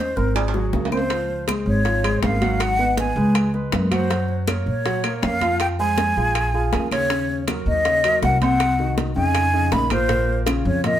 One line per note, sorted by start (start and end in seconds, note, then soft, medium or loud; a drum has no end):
0.00 0.11 D#2 medium
0.00 0.10 C#4 medium
0.00 0.18 C5 medium
0.00 0.11 D#5 medium
0.16 0.69 G#1 medium
0.16 0.48 C4 medium
0.16 0.37 A#4 medium
0.16 0.48 C5 medium
0.16 low bongo medium
0.35 0.92 G#4 medium
0.35 high conga soft
0.35 high timbale medium
0.35 claves medium
0.48 high timbale medium
0.54 0.85 F#3 medium
0.54 0.85 F#4 medium
0.54 low bongo medium
0.54 high conga soft
0.73 1.61 C#2 medium
0.73 low bongo medium
0.73 high conga medium
0.73 low timbale medium
0.85 low timbale medium
0.92 1.07 C4 medium
0.92 1.07 C5 medium
0.92 1.44 C5 medium
0.92 low bongo medium
0.92 high conga medium
0.92 claves medium
0.97 low timbale medium
1.10 1.41 F3 medium
1.10 1.41 F4 medium
1.10 1.42 F5 medium
1.10 high bongo medium
1.10 high conga soft
1.10 high timbale medium
1.30 high conga soft
1.47 1.78 G#3 medium
1.47 1.79 G#4 medium
1.47 1.79 C5 medium
1.47 high bongo medium
1.47 high conga medium
1.47 high timbale medium
1.47 low timbale medium
1.47 claves medium
1.66 2.19 G#1 medium
1.66 2.19 C#5 medium
1.66 high conga soft
1.85 2.01 F3 medium
1.85 2.01 F4 medium
1.85 2.01 F5 medium
1.85 high bongo medium
1.85 high conga soft
1.85 high timbale medium
2.04 2.35 G#3 medium
2.04 2.35 G#4 medium
2.04 2.35 C5 medium
2.04 high conga soft
2.04 high timbale medium
2.04 claves medium
2.22 3.10 G#1 medium
2.22 2.63 F5 medium
2.22 high bongo medium
2.22 low bongo medium
2.22 high conga medium
2.22 low timbale medium
2.41 2.72 F#3 medium
2.41 2.72 F#4 medium
2.41 2.72 F#5 medium
2.41 high conga medium
2.41 high timbale medium
2.60 2.98 F#5 loud
2.60 high bongo medium
2.60 high timbale medium
2.60 claves medium
2.79 3.10 B3 medium
2.79 3.10 B4 medium
2.79 3.10 D#5 medium
2.79 high bongo soft
2.79 high conga soft
2.97 3.51 G#5 medium
2.97 high bongo medium
2.97 high conga medium
2.97 high timbale medium
2.97 low timbale medium
3.16 3.68 C#2 loud
3.16 3.47 G#3 medium
3.16 3.47 G#4 medium
3.16 3.47 B4 medium
3.35 high bongo medium
3.35 high conga soft
3.35 high timbale medium
3.35 claves medium
3.54 3.85 G#3 medium
3.54 3.85 G#4 medium
3.54 3.85 B4 medium
3.54 high bongo soft
3.54 high conga soft
3.72 4.60 F#2 medium
3.72 high bongo medium
3.72 low bongo medium
3.72 high conga medium
3.72 high timbale medium
3.72 low timbale medium
3.91 4.07 F#3 medium
3.91 4.07 F#4 medium
3.91 4.44 C5 medium
3.91 4.07 F#5 medium
3.91 high bongo soft
3.91 high conga medium
3.91 high timbale medium
3.91 claves medium
4.10 4.41 F#3 medium
4.10 4.41 F#4 medium
4.10 4.41 F#5 medium
4.10 high bongo medium
4.10 high timbale medium
4.29 high conga soft
4.47 4.78 A#3 medium
4.47 4.79 A#4 medium
4.47 4.79 C#5 medium
4.47 high bongo medium
4.47 high conga medium
4.47 high timbale medium
4.47 low timbale medium
4.47 claves medium
4.66 5.19 A#2 medium
4.66 5.26 C#5 medium
4.66 high conga soft
4.85 5.01 F#3 medium
4.85 5.01 F#4 medium
4.85 5.01 F#5 medium
4.85 high bongo medium
4.85 high conga soft
4.85 high timbale medium
5.04 5.35 A#3 medium
5.04 5.35 A#4 medium
5.04 5.35 C#5 medium
5.04 high conga soft
5.04 high timbale medium
5.04 claves medium
5.22 6.11 F2 medium
5.22 5.60 F5 medium
5.22 high bongo medium
5.22 low bongo medium
5.22 high conga medium
5.22 low timbale medium
5.41 5.72 F3 medium
5.41 5.72 F4 medium
5.41 5.73 F5 medium
5.41 high conga medium
5.41 high timbale medium
5.60 5.66 G5 loud
5.60 high bongo medium
5.60 high conga soft
5.60 high timbale medium
5.60 claves medium
5.79 6.10 G#3 medium
5.79 6.10 G#4 medium
5.79 6.10 C5 medium
5.79 6.88 G#5 loud
5.79 high bongo soft
5.79 high conga soft
5.98 high bongo medium
5.98 high conga medium
5.98 high timbale medium
5.98 low timbale medium
6.17 6.69 A#1 medium
6.17 6.47 F3 medium
6.17 6.47 F4 medium
6.17 6.47 G#4 medium
6.35 high bongo medium
6.35 high conga soft
6.35 high timbale medium
6.35 claves medium
6.54 6.85 F3 medium
6.54 6.85 F4 medium
6.54 6.85 G#4 medium
6.54 high bongo soft
6.54 high conga soft
6.73 7.61 D#2 medium
6.73 high bongo medium
6.73 low bongo medium
6.73 high conga medium
6.73 high timbale medium
6.73 low timbale medium
6.91 7.07 C#3 medium
6.91 7.07 C#4 medium
6.91 7.44 C#5 medium
6.91 7.07 C#5 medium
6.91 high bongo soft
6.91 high conga medium
6.91 high timbale medium
6.91 claves medium
7.10 7.41 C#3 medium
7.10 7.41 C#4 medium
7.10 7.41 C#5 medium
7.10 high bongo medium
7.10 high timbale medium
7.30 high conga soft
7.48 7.79 F#3 medium
7.48 7.79 F#4 medium
7.48 7.79 A#4 medium
7.48 high bongo medium
7.48 high conga medium
7.48 high timbale medium
7.48 low timbale medium
7.48 claves medium
7.66 8.18 D#2 medium
7.66 8.19 D#5 medium
7.66 high conga soft
7.85 8.01 C#3 medium
7.85 8.01 C#4 medium
7.85 8.01 C#5 medium
7.85 high bongo medium
7.85 high conga soft
7.85 high timbale medium
8.04 8.35 F#3 medium
8.04 8.35 F#4 medium
8.04 8.35 A#4 medium
8.04 high conga soft
8.04 high timbale medium
8.04 claves medium
8.22 9.10 C2 medium
8.22 8.40 F#5 loud
8.22 high bongo medium
8.22 low bongo medium
8.22 high conga medium
8.22 low timbale medium
8.41 8.72 C3 medium
8.41 8.73 C4 medium
8.41 8.73 C5 medium
8.41 8.94 F#5 medium
8.41 high conga medium
8.41 high timbale medium
8.60 high bongo medium
8.60 high timbale medium
8.60 claves medium
8.79 9.10 D#3 medium
8.79 9.10 D#4 medium
8.79 9.10 F#4 medium
8.79 high bongo soft
8.79 high conga soft
8.98 high bongo medium
8.98 high conga medium
8.98 high timbale medium
8.98 low timbale medium
9.16 9.68 F2 loud
9.16 9.47 C#3 medium
9.16 9.47 C#4 medium
9.16 9.47 D#4 medium
9.16 9.74 G#5 loud
9.35 high bongo medium
9.35 high conga soft
9.35 high timbale medium
9.35 claves medium
9.53 9.84 C#3 medium
9.53 9.84 C#4 medium
9.53 9.84 D#4 medium
9.53 high bongo soft
9.53 high conga soft
9.72 10.60 A#1 medium
9.72 9.93 B5 loud
9.72 high bongo medium
9.72 low bongo medium
9.72 high conga medium
9.72 high timbale medium
9.72 low timbale medium
9.90 10.06 A#2 medium
9.90 10.07 A#3 medium
9.90 10.07 A#4 medium
9.90 10.39 C5 loud
9.90 high bongo soft
9.90 high conga medium
9.90 high timbale medium
9.90 claves medium
10.09 10.40 A#2 medium
10.09 10.40 A#3 medium
10.09 10.40 A#4 medium
10.09 high bongo medium
10.09 high timbale medium
10.29 high conga soft
10.46 10.78 C#3 medium
10.46 10.78 C#4 medium
10.46 10.78 F4 medium
10.46 high bongo medium
10.46 high conga medium
10.46 high timbale medium
10.46 low timbale medium
10.46 claves medium
10.65 11.00 F2 loud
10.65 10.84 C#5 medium
10.65 high conga soft
10.84 10.99 A#2 medium
10.84 11.00 A#3 medium
10.84 11.00 A#4 medium
10.84 11.00 D#5 loud
10.84 high bongo medium
10.84 high conga soft
10.84 high timbale medium